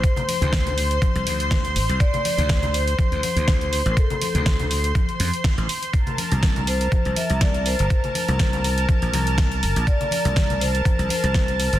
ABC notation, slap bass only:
X:1
M:4/4
L:1/16
Q:"Swing 16ths" 1/4=122
K:Cmix
V:1 name="Slap bass" clef=bass
z3 D,,4- D,, z C,, D,,4 A,,, C,, | z3 D,,4- D,, z D,, z D,,4 A,,, | z3 D,,4- D,, z2 F,, z2 A,,, z2 | z3 C,,4- C,, z C,, z C,,4 G,,, |
z3 C,,4- C,, z B,,, C,,4 G,,, B,,, | z3 C,,4- C,, z C,, z C,,4 G,,, |]